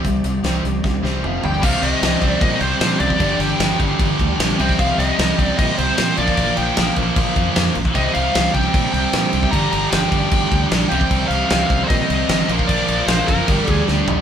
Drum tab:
CC |----------------|x-x-x-x-x-x-x-x-|x-x-x-x-x-x-x-x-|x-x-x-x-x-x-x-x-|
HH |x-x-x-x---------|----------------|----------------|----------------|
SD |----o---o-o-----|----o-------o---|--o-o-------o--o|--o-o-------o--o|
T2 |------------o---|----------------|----------------|----------------|
FT |--------------o-|----------------|----------------|----------------|
BD |o-------o-------|o-----o-o------o|o-----o-o-o----o|o-----o-o------o|

CC |x-x-x-x-x-x-x-x-|x-x-x-x-x-x-x-x-|x-x-x-x-x-x-x-x-|x-x-x-x-x-x-x-x-|
HH |----------------|----------------|----------------|----------------|
SD |----o-------o---|----o-------o---|----o-------o---|--o-o-------o---|
T2 |----------------|----------------|----------------|----------------|
FT |----------------|----------------|----------------|----------------|
BD |o-----o-o-o----o|o-----o-o------o|o-----o-o-o----o|o-----o-o------o|

CC |x-x-x-x-x-x-----|
HH |----------------|
SD |----o-------o---|
T2 |----------------|
FT |--------------o-|
BD |o-----o-o-o-----|